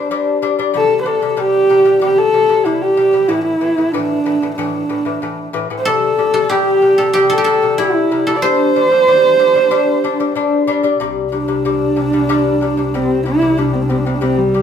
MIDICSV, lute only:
0, 0, Header, 1, 2, 480
1, 0, Start_track
1, 0, Tempo, 641711
1, 550, Time_signature, 4, 2, 24, 8
1, 10937, End_track
2, 0, Start_track
2, 0, Title_t, "Lute"
2, 0, Program_c, 0, 24
2, 82, Note_on_c, 0, 55, 91
2, 85, Note_on_c, 0, 62, 93
2, 268, Note_off_c, 0, 55, 0
2, 270, Note_off_c, 0, 62, 0
2, 316, Note_on_c, 0, 55, 87
2, 321, Note_on_c, 0, 62, 90
2, 410, Note_off_c, 0, 55, 0
2, 411, Note_off_c, 0, 62, 0
2, 439, Note_on_c, 0, 55, 75
2, 444, Note_on_c, 0, 62, 94
2, 530, Note_off_c, 0, 55, 0
2, 533, Note_off_c, 0, 62, 0
2, 551, Note_on_c, 0, 48, 79
2, 554, Note_on_c, 0, 55, 93
2, 741, Note_off_c, 0, 48, 0
2, 743, Note_off_c, 0, 55, 0
2, 787, Note_on_c, 0, 48, 67
2, 791, Note_on_c, 0, 55, 72
2, 883, Note_off_c, 0, 48, 0
2, 885, Note_off_c, 0, 55, 0
2, 913, Note_on_c, 0, 48, 65
2, 917, Note_on_c, 0, 55, 70
2, 1006, Note_off_c, 0, 48, 0
2, 1008, Note_off_c, 0, 55, 0
2, 1023, Note_on_c, 0, 48, 74
2, 1027, Note_on_c, 0, 55, 96
2, 1216, Note_off_c, 0, 48, 0
2, 1219, Note_off_c, 0, 55, 0
2, 1269, Note_on_c, 0, 48, 65
2, 1274, Note_on_c, 0, 55, 77
2, 1363, Note_off_c, 0, 48, 0
2, 1366, Note_off_c, 0, 55, 0
2, 1384, Note_on_c, 0, 48, 67
2, 1388, Note_on_c, 0, 55, 80
2, 1481, Note_off_c, 0, 48, 0
2, 1483, Note_off_c, 0, 55, 0
2, 1507, Note_on_c, 0, 48, 90
2, 1510, Note_on_c, 0, 55, 86
2, 1697, Note_off_c, 0, 48, 0
2, 1699, Note_off_c, 0, 55, 0
2, 1747, Note_on_c, 0, 48, 69
2, 1751, Note_on_c, 0, 55, 70
2, 1842, Note_off_c, 0, 48, 0
2, 1844, Note_off_c, 0, 55, 0
2, 1863, Note_on_c, 0, 48, 67
2, 1866, Note_on_c, 0, 55, 76
2, 1959, Note_off_c, 0, 48, 0
2, 1961, Note_off_c, 0, 55, 0
2, 1984, Note_on_c, 0, 48, 71
2, 1989, Note_on_c, 0, 55, 85
2, 2175, Note_off_c, 0, 48, 0
2, 2178, Note_off_c, 0, 55, 0
2, 2223, Note_on_c, 0, 48, 67
2, 2224, Note_on_c, 0, 55, 81
2, 2319, Note_off_c, 0, 48, 0
2, 2319, Note_off_c, 0, 55, 0
2, 2340, Note_on_c, 0, 48, 68
2, 2348, Note_on_c, 0, 55, 76
2, 2437, Note_off_c, 0, 48, 0
2, 2441, Note_off_c, 0, 55, 0
2, 2458, Note_on_c, 0, 45, 94
2, 2461, Note_on_c, 0, 52, 94
2, 2652, Note_off_c, 0, 45, 0
2, 2653, Note_off_c, 0, 52, 0
2, 2699, Note_on_c, 0, 45, 66
2, 2704, Note_on_c, 0, 52, 70
2, 2797, Note_off_c, 0, 45, 0
2, 2798, Note_off_c, 0, 52, 0
2, 2823, Note_on_c, 0, 45, 66
2, 2830, Note_on_c, 0, 52, 76
2, 2919, Note_off_c, 0, 45, 0
2, 2920, Note_off_c, 0, 52, 0
2, 2944, Note_on_c, 0, 45, 86
2, 2949, Note_on_c, 0, 52, 99
2, 3134, Note_off_c, 0, 45, 0
2, 3137, Note_off_c, 0, 52, 0
2, 3184, Note_on_c, 0, 45, 70
2, 3189, Note_on_c, 0, 52, 82
2, 3278, Note_off_c, 0, 45, 0
2, 3280, Note_off_c, 0, 52, 0
2, 3308, Note_on_c, 0, 45, 66
2, 3314, Note_on_c, 0, 52, 72
2, 3400, Note_off_c, 0, 45, 0
2, 3403, Note_off_c, 0, 52, 0
2, 3425, Note_on_c, 0, 45, 90
2, 3431, Note_on_c, 0, 52, 105
2, 3614, Note_off_c, 0, 45, 0
2, 3617, Note_off_c, 0, 52, 0
2, 3660, Note_on_c, 0, 45, 69
2, 3663, Note_on_c, 0, 52, 68
2, 3756, Note_off_c, 0, 45, 0
2, 3757, Note_off_c, 0, 52, 0
2, 3779, Note_on_c, 0, 45, 69
2, 3785, Note_on_c, 0, 52, 72
2, 3875, Note_off_c, 0, 45, 0
2, 3878, Note_off_c, 0, 52, 0
2, 3904, Note_on_c, 0, 45, 80
2, 3912, Note_on_c, 0, 52, 80
2, 4094, Note_off_c, 0, 45, 0
2, 4097, Note_off_c, 0, 52, 0
2, 4139, Note_on_c, 0, 45, 93
2, 4142, Note_on_c, 0, 52, 92
2, 4235, Note_off_c, 0, 45, 0
2, 4237, Note_off_c, 0, 52, 0
2, 4265, Note_on_c, 0, 45, 78
2, 4271, Note_on_c, 0, 52, 72
2, 4358, Note_off_c, 0, 45, 0
2, 4361, Note_off_c, 0, 52, 0
2, 4387, Note_on_c, 0, 48, 86
2, 4392, Note_on_c, 0, 55, 96
2, 4575, Note_off_c, 0, 48, 0
2, 4577, Note_off_c, 0, 55, 0
2, 4624, Note_on_c, 0, 48, 70
2, 4629, Note_on_c, 0, 55, 80
2, 4718, Note_off_c, 0, 48, 0
2, 4719, Note_off_c, 0, 55, 0
2, 4739, Note_on_c, 0, 48, 77
2, 4745, Note_on_c, 0, 55, 72
2, 4835, Note_off_c, 0, 48, 0
2, 4838, Note_off_c, 0, 55, 0
2, 4861, Note_on_c, 0, 48, 89
2, 4867, Note_on_c, 0, 55, 106
2, 5052, Note_off_c, 0, 48, 0
2, 5054, Note_off_c, 0, 55, 0
2, 5101, Note_on_c, 0, 48, 67
2, 5107, Note_on_c, 0, 55, 69
2, 5196, Note_off_c, 0, 48, 0
2, 5199, Note_off_c, 0, 55, 0
2, 5224, Note_on_c, 0, 48, 69
2, 5229, Note_on_c, 0, 55, 68
2, 5317, Note_off_c, 0, 48, 0
2, 5320, Note_off_c, 0, 55, 0
2, 5347, Note_on_c, 0, 48, 93
2, 5350, Note_on_c, 0, 55, 106
2, 5535, Note_off_c, 0, 48, 0
2, 5536, Note_off_c, 0, 55, 0
2, 5580, Note_on_c, 0, 48, 72
2, 5586, Note_on_c, 0, 55, 84
2, 5675, Note_off_c, 0, 48, 0
2, 5678, Note_off_c, 0, 55, 0
2, 5705, Note_on_c, 0, 48, 73
2, 5710, Note_on_c, 0, 55, 73
2, 5798, Note_off_c, 0, 48, 0
2, 5800, Note_off_c, 0, 55, 0
2, 5822, Note_on_c, 0, 48, 78
2, 5828, Note_on_c, 0, 55, 89
2, 6013, Note_off_c, 0, 48, 0
2, 6015, Note_off_c, 0, 55, 0
2, 6069, Note_on_c, 0, 48, 70
2, 6072, Note_on_c, 0, 55, 83
2, 6160, Note_off_c, 0, 48, 0
2, 6162, Note_off_c, 0, 55, 0
2, 6188, Note_on_c, 0, 48, 66
2, 6191, Note_on_c, 0, 55, 69
2, 6279, Note_off_c, 0, 48, 0
2, 6281, Note_off_c, 0, 55, 0
2, 6309, Note_on_c, 0, 55, 84
2, 6313, Note_on_c, 0, 62, 92
2, 6496, Note_off_c, 0, 55, 0
2, 6498, Note_off_c, 0, 62, 0
2, 6550, Note_on_c, 0, 55, 65
2, 6555, Note_on_c, 0, 62, 73
2, 6641, Note_off_c, 0, 55, 0
2, 6643, Note_off_c, 0, 62, 0
2, 6667, Note_on_c, 0, 55, 71
2, 6673, Note_on_c, 0, 62, 74
2, 6759, Note_off_c, 0, 55, 0
2, 6762, Note_off_c, 0, 62, 0
2, 6786, Note_on_c, 0, 55, 79
2, 6795, Note_on_c, 0, 62, 87
2, 6975, Note_off_c, 0, 55, 0
2, 6979, Note_off_c, 0, 62, 0
2, 7026, Note_on_c, 0, 55, 80
2, 7029, Note_on_c, 0, 62, 82
2, 7119, Note_off_c, 0, 55, 0
2, 7121, Note_off_c, 0, 62, 0
2, 7144, Note_on_c, 0, 55, 80
2, 7151, Note_on_c, 0, 62, 76
2, 7238, Note_off_c, 0, 55, 0
2, 7241, Note_off_c, 0, 62, 0
2, 7262, Note_on_c, 0, 55, 107
2, 7266, Note_on_c, 0, 62, 107
2, 7454, Note_off_c, 0, 55, 0
2, 7456, Note_off_c, 0, 62, 0
2, 7510, Note_on_c, 0, 55, 76
2, 7514, Note_on_c, 0, 62, 89
2, 7602, Note_off_c, 0, 55, 0
2, 7603, Note_off_c, 0, 62, 0
2, 7628, Note_on_c, 0, 55, 78
2, 7632, Note_on_c, 0, 62, 82
2, 7721, Note_off_c, 0, 55, 0
2, 7723, Note_off_c, 0, 62, 0
2, 7745, Note_on_c, 0, 55, 85
2, 7751, Note_on_c, 0, 62, 97
2, 7936, Note_off_c, 0, 55, 0
2, 7939, Note_off_c, 0, 62, 0
2, 7984, Note_on_c, 0, 55, 89
2, 7989, Note_on_c, 0, 62, 101
2, 8079, Note_off_c, 0, 55, 0
2, 8082, Note_off_c, 0, 62, 0
2, 8103, Note_on_c, 0, 55, 73
2, 8109, Note_on_c, 0, 62, 85
2, 8199, Note_off_c, 0, 55, 0
2, 8202, Note_off_c, 0, 62, 0
2, 8227, Note_on_c, 0, 48, 88
2, 8234, Note_on_c, 0, 55, 97
2, 8417, Note_off_c, 0, 48, 0
2, 8421, Note_off_c, 0, 55, 0
2, 8467, Note_on_c, 0, 48, 61
2, 8472, Note_on_c, 0, 55, 72
2, 8561, Note_off_c, 0, 48, 0
2, 8564, Note_off_c, 0, 55, 0
2, 8587, Note_on_c, 0, 48, 68
2, 8591, Note_on_c, 0, 55, 73
2, 8681, Note_off_c, 0, 48, 0
2, 8683, Note_off_c, 0, 55, 0
2, 8715, Note_on_c, 0, 48, 76
2, 8719, Note_on_c, 0, 55, 87
2, 8902, Note_off_c, 0, 48, 0
2, 8903, Note_off_c, 0, 55, 0
2, 8948, Note_on_c, 0, 48, 65
2, 8952, Note_on_c, 0, 55, 61
2, 9043, Note_off_c, 0, 48, 0
2, 9044, Note_off_c, 0, 55, 0
2, 9073, Note_on_c, 0, 48, 70
2, 9079, Note_on_c, 0, 55, 80
2, 9165, Note_off_c, 0, 48, 0
2, 9168, Note_off_c, 0, 55, 0
2, 9194, Note_on_c, 0, 48, 101
2, 9198, Note_on_c, 0, 55, 119
2, 9382, Note_off_c, 0, 48, 0
2, 9384, Note_off_c, 0, 55, 0
2, 9433, Note_on_c, 0, 48, 68
2, 9442, Note_on_c, 0, 55, 79
2, 9526, Note_off_c, 0, 48, 0
2, 9530, Note_off_c, 0, 55, 0
2, 9554, Note_on_c, 0, 48, 66
2, 9563, Note_on_c, 0, 55, 67
2, 9647, Note_off_c, 0, 48, 0
2, 9651, Note_off_c, 0, 55, 0
2, 9680, Note_on_c, 0, 48, 77
2, 9684, Note_on_c, 0, 55, 83
2, 9866, Note_off_c, 0, 48, 0
2, 9868, Note_off_c, 0, 55, 0
2, 9915, Note_on_c, 0, 48, 70
2, 9920, Note_on_c, 0, 55, 74
2, 10008, Note_off_c, 0, 48, 0
2, 10010, Note_off_c, 0, 55, 0
2, 10035, Note_on_c, 0, 48, 68
2, 10041, Note_on_c, 0, 55, 70
2, 10128, Note_off_c, 0, 48, 0
2, 10131, Note_off_c, 0, 55, 0
2, 10154, Note_on_c, 0, 48, 72
2, 10161, Note_on_c, 0, 55, 82
2, 10344, Note_off_c, 0, 48, 0
2, 10348, Note_off_c, 0, 55, 0
2, 10395, Note_on_c, 0, 48, 66
2, 10399, Note_on_c, 0, 55, 74
2, 10489, Note_off_c, 0, 48, 0
2, 10491, Note_off_c, 0, 55, 0
2, 10519, Note_on_c, 0, 48, 74
2, 10524, Note_on_c, 0, 55, 78
2, 10611, Note_off_c, 0, 48, 0
2, 10613, Note_off_c, 0, 55, 0
2, 10630, Note_on_c, 0, 48, 80
2, 10635, Note_on_c, 0, 55, 90
2, 10823, Note_off_c, 0, 48, 0
2, 10825, Note_off_c, 0, 55, 0
2, 10876, Note_on_c, 0, 48, 61
2, 10880, Note_on_c, 0, 55, 73
2, 10937, Note_off_c, 0, 48, 0
2, 10937, Note_off_c, 0, 55, 0
2, 10937, End_track
0, 0, End_of_file